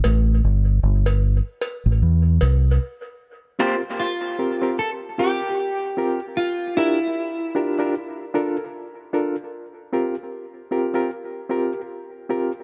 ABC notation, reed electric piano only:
X:1
M:4/4
L:1/16
Q:"Swing 16ths" 1/4=76
K:Cmix
V:1 name="Reed electric piano"
z16 | z2 [CFGB] z3 [CFGB] [CFGB] z2 [CFGB] [GB] z2 [CFGB] z | z2 [DFGB] z3 [DFGB] [DFGB] z2 [DFAB] [AB] z2 [DFAB] z | z2 [CFGB] z3 [CFGB] [CFGB] z2 [CFGB] [GB] z2 [CFGB] z |]